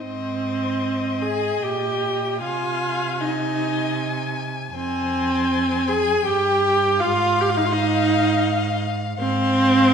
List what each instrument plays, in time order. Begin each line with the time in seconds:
0.01 cello G#2, viola C4, violin C5 D#5
1.22 viola G#4, violin G#5
1.62 cello A#2, viola G4, violin G5
2.41 cello C3, viola F4, violin F5 G#5
3.20 viola D#4, violin D#5 G#5
4.74 cello F2, viola C4, violin C5 G#5
5.88 viola G#4, violin G#5
6.25 cello G2, viola G4, violin G5
6.99 cello G#2, viola F4, violin F5
7.41 viola G4
7.50 viola F4
7.57 viola D#4
7.65 viola F4
7.72 viola D#4, violin D#5
9.19 cello G#2, viola C4, violin C5 F5